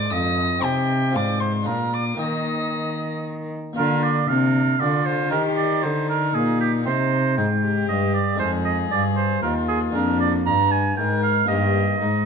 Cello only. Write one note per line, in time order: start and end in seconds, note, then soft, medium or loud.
0.00 0.12 G#2 medium
0.13 0.63 F2 medium
0.64 1.17 C3 medium
1.16 1.70 G#2 medium
1.68 2.20 A#2 medium
2.20 3.55 D#3 medium
3.77 4.25 D3 medium
4.29 4.80 C3 medium
4.81 5.34 D3 medium
5.33 5.86 D#3 medium
5.84 6.35 D3 medium
6.36 6.88 A#2 medium
6.87 7.40 C3 medium
7.38 7.89 G#2 medium
7.89 8.40 G2 medium
8.41 8.91 F2 medium
8.92 9.42 G2 medium
9.44 9.94 D#2 medium
9.95 10.48 F2 medium
10.47 10.97 G2 medium
10.98 11.48 G#2 medium
11.49 11.99 G2 medium
12.00 12.26 G#2 medium